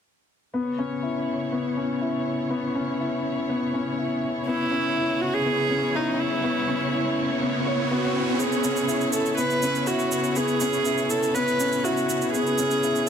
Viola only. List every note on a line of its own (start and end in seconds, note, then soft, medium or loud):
4.47 5.22 E4 medium
5.21 5.35 F#4 medium
5.34 5.97 G#4 loud
5.95 6.21 D#4 medium
6.20 7.18 E4 medium
7.90 8.40 F#4 medium
8.39 9.13 G#4 medium
9.13 9.37 A4 medium
9.38 9.88 B4 medium
9.87 10.38 F#4 medium
10.36 11.11 G#4 medium
11.10 11.36 A4 medium
11.34 11.85 B4 medium
11.84 12.33 F#4 medium
12.33 13.09 G#4 loud